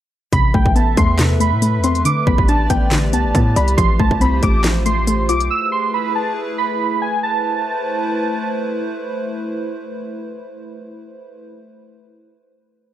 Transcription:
0.33 0.53 A1 loud
0.33 1.18 C3 medium
0.33 3.74 A3 medium
0.33 2.04 A4 medium
0.33 3.74 B4 medium
0.33 2.04 E5 medium
0.33 0.50 B5 loud
0.33 kick loud
0.33 closed hi-hat medium
0.54 0.65 A1 loud
0.54 0.96 A3 medium
0.54 0.72 G5 medium
0.54 kick loud
0.66 0.96 A1 loud
0.66 kick medium
0.75 1.84 B3 medium
0.75 0.93 A5 medium
0.75 closed hi-hat medium
0.97 1.53 E2 loud
0.97 1.39 A3 medium
0.97 1.15 C6 medium
0.97 kick loud
0.97 closed hi-hat medium
1.19 2.06 C3 medium
1.19 snare loud
1.19 clap loud
1.19 closed hi-hat medium
1.40 1.61 A3 medium
1.40 1.81 B5 medium
1.40 closed hi-hat medium
1.52 1.80 A2 loud
1.62 2.05 A3 loud
1.62 closed hi-hat medium
1.79 2.04 E2 loud
1.84 2.05 C4 medium
1.84 2.01 C6 medium
1.84 closed hi-hat medium
1.95 closed hi-hat soft
2.05 2.90 D3 medium
2.05 5.47 G4 medium
2.05 3.76 D5 medium
2.05 2.23 D6 loud
2.05 closed hi-hat medium
2.27 2.38 A1 loud
2.27 2.69 B3 medium
2.27 2.44 B5 medium
2.27 kick loud
2.38 2.69 A1 loud
2.38 kick medium
2.48 3.56 D4 medium
2.48 2.66 A5 medium
2.48 closed hi-hat medium
2.70 3.15 A1 loud
2.70 3.12 B3 medium
2.70 2.87 G5 medium
2.70 kick medium
2.70 closed hi-hat medium
2.91 3.78 D3 medium
2.91 snare loud
2.91 clap loud
2.91 closed hi-hat medium
3.13 3.26 C2 loud
3.13 3.33 B3 medium
3.13 3.54 A5 medium
3.13 closed hi-hat medium
3.25 3.34 A1 loud
3.35 3.55 A2 loud
3.35 3.78 B3 medium
3.35 kick medium
3.35 closed hi-hat medium
3.56 3.77 C2 loud
3.56 3.78 D5 medium
3.56 3.74 B5 medium
3.56 closed hi-hat medium
3.68 closed hi-hat soft
3.77 3.99 A1 loud
3.77 4.64 F3 medium
3.77 5.49 A3 medium
3.77 5.49 F4 medium
3.77 5.49 C5 medium
3.77 3.95 C6 loud
3.77 kick loud
3.77 closed hi-hat loud
4.00 4.10 A1 loud
4.00 4.42 A3 medium
4.00 4.17 A5 medium
4.00 kick medium
4.11 4.41 C2 loud
4.11 kick medium
4.21 5.29 C4 medium
4.21 4.39 B5 medium
4.21 closed hi-hat medium
4.43 5.30 A1 loud
4.43 4.85 A3 medium
4.43 4.61 D6 medium
4.43 kick loud
4.43 closed hi-hat medium
4.64 5.51 F3 medium
4.64 snare loud
4.64 clap loud
4.64 closed hi-hat medium
4.86 5.06 A3 medium
4.86 5.26 C6 medium
4.86 closed hi-hat medium
5.07 5.50 A3 loud
5.07 closed hi-hat medium
5.29 5.50 B1 loud
5.29 5.51 F4 medium
5.29 5.46 D6 medium
5.29 closed hi-hat medium
5.40 closed hi-hat soft
5.50 7.22 A3 medium
5.50 7.22 E4 medium
5.50 7.22 G#4 medium
5.50 7.22 B4 medium
5.50 5.68 E6 loud
5.72 5.90 C6 medium
5.94 6.11 B5 medium
6.15 6.33 A5 medium
6.58 6.99 B5 medium
7.02 7.19 G#5 medium
7.23 11.45 A3 medium
7.23 11.45 E4 medium
7.23 11.45 B4 medium
7.23 11.45 C5 medium
7.23 8.49 A5 medium

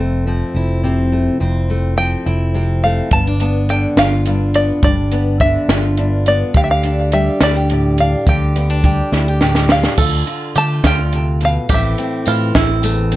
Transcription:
0.00 0.42 F1 medium
0.00 1.36 F2 medium
0.00 1.11 A3 medium
0.00 0.27 C4 medium
0.27 1.97 F3 medium
0.27 0.83 C4 medium
0.54 1.28 F1 medium
0.54 2.25 E4 medium
0.84 1.37 C3 medium
0.84 1.37 C4 medium
1.12 1.37 A3 soft
1.40 2.14 F1 medium
1.40 3.08 F2 medium
1.40 1.96 C4 medium
1.70 2.83 A3 soft
1.97 3.16 F3 medium
1.97 2.54 C4 soft
1.97 2.83 G5 medium
2.26 3.00 F1 medium
2.26 3.12 E4 medium
2.54 3.08 C3 medium
2.54 3.08 C4 medium
2.84 3.09 A3 soft
2.84 3.12 F5 medium
3.11 3.85 G1 medium
3.11 4.25 G2 medium
3.11 3.27 B3 medium
3.11 3.65 A5 medium
3.11 kick medium
3.11 closed hi-hat medium
3.27 3.68 D4 soft
3.40 4.55 B3 soft
3.40 closed hi-hat medium
3.69 5.39 D3 medium
3.69 4.27 D4 soft
3.69 3.98 G5 medium
3.69 closed hi-hat medium
3.96 4.70 G1 medium
3.96 4.81 F4 medium
3.96 4.57 F5 medium
3.96 snare medium
3.96 closed hi-hat medium
4.26 4.80 G2 medium
4.26 4.83 D4 medium
4.26 closed hi-hat medium
4.54 4.80 B3 medium
4.54 4.83 D5 medium
4.54 closed hi-hat medium
4.83 5.57 G1 medium
4.83 5.97 G2 medium
4.83 5.40 D4 medium
4.83 5.37 D5 medium
4.83 kick loud
4.83 closed hi-hat medium
5.12 6.26 B3 medium
5.12 closed hi-hat medium
5.40 6.54 D3 medium
5.40 5.98 D4 medium
5.40 6.29 E5 medium
5.40 kick medium
5.40 closed hi-hat medium
5.68 6.42 G1 medium
5.68 6.52 F4 medium
5.68 snare medium
5.68 closed hi-hat medium
5.97 6.52 G2 medium
5.97 6.84 D4 soft
5.97 closed hi-hat medium
6.26 6.52 B3 medium
6.26 6.57 D5 medium
6.26 closed hi-hat medium
6.54 7.28 D2 medium
6.54 8.27 D3 medium
6.54 7.13 G4 medium
6.54 6.63 F5 medium
6.54 kick loud
6.54 closed hi-hat medium
6.64 6.70 E5 medium
6.71 7.13 F5 medium
6.83 8.00 D4 medium
6.83 closed hi-hat medium
7.12 8.83 G3 medium
7.12 7.41 G4 medium
7.12 7.42 E5 medium
7.12 closed hi-hat medium
7.41 8.14 D2 medium
7.41 7.56 E4 medium
7.41 7.95 D5 medium
7.41 snare medium
7.41 closed hi-hat medium
7.56 7.70 G4 medium
7.70 8.27 A2 medium
7.70 8.24 G4 medium
7.70 closed hi-hat medium
7.98 8.55 D4 medium
7.98 8.28 F5 medium
7.98 closed hi-hat medium
8.27 9.00 D2 medium
8.27 9.97 D3 medium
8.27 8.84 G4 medium
8.27 9.38 G5 medium
8.27 kick loud
8.27 closed hi-hat medium
8.56 8.70 B3 medium
8.56 closed hi-hat medium
8.70 9.69 D4 soft
8.84 9.98 G3 medium
8.84 9.12 G4 medium
8.84 kick medium
8.84 closed hi-hat medium
9.12 9.86 D2 medium
9.12 9.28 E4 medium
9.12 snare soft
9.28 9.41 G4 medium
9.41 9.98 A2 medium
9.41 9.95 G4 medium
9.41 snare medium
9.55 snare medium
9.69 9.95 D4 medium
9.69 10.52 F5 medium
9.69 snare medium
9.84 snare medium
9.98 10.22 D2 medium
9.98 10.83 D3 medium
9.98 10.26 F4 medium
9.98 10.54 A4 medium
9.98 kick loud
9.98 crash medium
9.98 tambourine medium
10.12 tambourine soft
10.27 10.55 F4 medium
10.27 closed hi-hat medium
10.55 10.80 D3 medium
10.55 11.71 A3 medium
10.55 11.67 F4 medium
10.55 10.83 G4 medium
10.55 10.83 A5 medium
10.55 closed hi-hat soft
10.55 tambourine medium
10.84 11.57 D2 medium
10.84 11.12 D3 medium
10.84 11.40 F4 medium
10.84 11.38 G5 medium
10.84 kick medium
10.84 snare medium
10.84 closed hi-hat medium
11.13 11.41 C3 medium
11.13 closed hi-hat medium
11.41 11.69 B2 medium
11.41 closed hi-hat medium
11.41 tambourine soft
11.45 11.72 F5 medium
11.69 11.94 A1 medium
11.69 13.16 A2 medium
11.69 12.25 E3 medium
11.69 12.82 A3 medium
11.69 11.97 C4 soft
11.69 12.25 G4 medium
11.69 kick loud
11.69 closed hi-hat medium
11.69 tambourine medium
11.73 12.26 E4 medium
11.73 12.82 E5 medium
11.83 tambourine soft
11.98 12.52 C4 medium
11.98 closed hi-hat medium
12.26 12.51 A2 medium
12.26 13.16 E3 medium
12.26 13.16 E4 medium
12.26 12.55 F4 medium
12.26 closed hi-hat medium
12.26 tambourine medium
12.54 13.16 A1 medium
12.54 13.11 C4 medium
12.54 13.11 E4 medium
12.54 kick medium
12.54 snare loud
12.54 closed hi-hat medium
12.82 13.16 E2 medium
12.82 13.16 A3 medium
12.82 closed hi-hat medium
12.82 tambourine medium
13.12 13.16 C4 medium
13.12 closed hi-hat medium
13.12 tambourine soft

